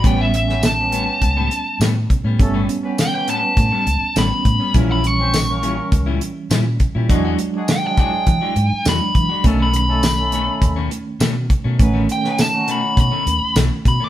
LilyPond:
<<
  \new Staff \with { instrumentName = "Lead electric guitar" } { \time 4/4 \key a \major \tempo 4 = 102 g''16 e''16 e''8 a''2 r4 | r4 g''16 g''16 a''4. b''4 | r16 b''16 cis'''2 r4. | r4 g''16 g''16 g''4. b''4 |
r16 b''16 b''2 r4. | r8 g''8 a''8 b''8 b''4 r8 b''16 d'''16 | }
  \new Staff \with { instrumentName = "Horn section" } { \time 4/4 \key a \major <b cis' g' b'>8 r16 <b cis' g' b'>16 r16 <b cis' g' b'>4 r4. r16 | <a cis' g' a'>8 r16 <b cis' g' b'>16 r16 <b cis' g' b'>4 r4. r16 | <ais cis' g' ais'>8 r16 <c' cis' g' c''>16 r16 <ais cis' g' ais'>4 r4. r16 | <gis d' fis' gis'>8 r16 <gis d' fis' gis'>16 r16 <fis gis d' gis'>4 r4. r16 |
<a cis' dis' a'>8 r16 <a cis' dis' a'>16 r16 <a cis' dis' a'>4 r4. r16 | <b cis' dis' b'>8 r16 <b cis' dis' b'>16 r16 <fis cis' dis' fis'>4 r4. r16 | }
  \new Staff \with { instrumentName = "Clean electric guitar" } { \time 4/4 \key a \major <a, g b cis'>16 <a, g b cis'>16 r4 <a, g b cis'>16 r8 <a, g b cis'>16 r8 <a, g b cis'>16 r8 <g b cis'>16 | r16 <a, g b cis'>16 r4 <a, g b cis'>16 r8 <a, g b cis'>16 r8 <a, g b cis'>16 r8 <g b cis'>16 | <ais, g cis' e'>16 <ais, g cis' e'>16 r4 <ais, g cis' e'>16 r8 <ais, g cis' e'>16 r8 <ais, g cis' e'>16 r8 <g cis' e'>16 | <e gis d' fis'>16 <e gis d' fis'>16 r4 <e gis d' fis'>16 r8 <e gis d' fis'>16 r8 <e gis d' fis'>16 r8 <gis d' fis'>16 |
<b, dis a cis'>16 <b, dis a cis'>16 r4 <b, dis a cis'>16 r8 <b, dis a cis'>16 r8 <b, dis a cis'>16 r8 <dis a cis'>16 | r16 <b, dis a cis'>16 r4 <b, dis a cis'>16 r8 <b, dis a cis'>16 r8 <b, dis a cis'>16 r8 <dis a cis'>16 | }
  \new Staff \with { instrumentName = "Reed electric piano" } { \time 4/4 \key a \major <g b cis'>1 | <g b cis'>2. <g b cis'>4 | <e g cis'>1 | <fis gis d'>2. <fis gis d'>4 |
<dis a cis'>1 | <dis a cis'>1 | }
  \new Staff \with { instrumentName = "Fingered electric bass" } { \clef bass \time 4/4 \key a \major a,,2 cis,8 r8 a,8 r16 a,16 | g,,8 r4. a,16 r16 cis,16 r16 a,,16 r16 a,16 r16 | ais,,2 cis,8 r8 ais,8 r16 ais,16 | e,8 r4. e16 r16 gis,16 r16 e,16 r16 e16 r16 |
b,,2 dis,8 r8 b,8 r16 b,16 | a,,8 r4. b,16 r16 dis,16 r16 b,,16 r16 b,16 r16 | }
  \new DrumStaff \with { instrumentName = "Drums" } \drummode { \time 4/4 <hh bd>8 hh16 sn16 <hh sn tamb>8 hh8 <hh bd>8 hh8 <hh sn tamb>8 <hh bd>8 | <hh bd>8 hh8 <hh sn tamb>8 hh8 <hh bd>8 hh8 <hh sn tamb>8 <hh bd>8 | <hh bd>8 hh8 <hh sn tamb>8 hh8 <hh bd>8 hh8 <hh sn tamb>8 <hh bd>8 | <hh bd>8 hh8 <hh sn tamb>8 <hh bd>8 <hh bd>8 hh8 <hh sn tamb>8 <hh bd>8 |
<hh bd>8 hh8 <hh sn tamb>8 hh8 <hh bd>8 hh8 <hh sn tamb>8 <hh bd>8 | <hh bd>8 hh16 sn16 <hh sn tamb>8 hh8 <hh bd>8 hh8 <hh sn tamb>8 <hh bd>8 | }
>>